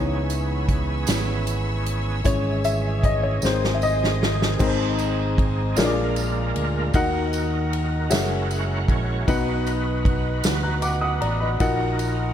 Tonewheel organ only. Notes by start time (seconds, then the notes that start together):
Already playing: E3 B3 C#4 G#4
2.25 E3 G#3 C#4 G#4
3.42 D#3 G#3 C4 G#4
4.61 C4 D#4 G#4
5.76 G#3 A#3 D4 F4 A#4
6.94 D#4 F4 A#4
7.01 F#4
8.11 G#3 C#4 E4 F#4 A#4
8.50 F#5
8.91 C#5
9.29 D4 F#4 B4
9.35 D#4
11.61 D#4 F#4 A4
11.67 A#4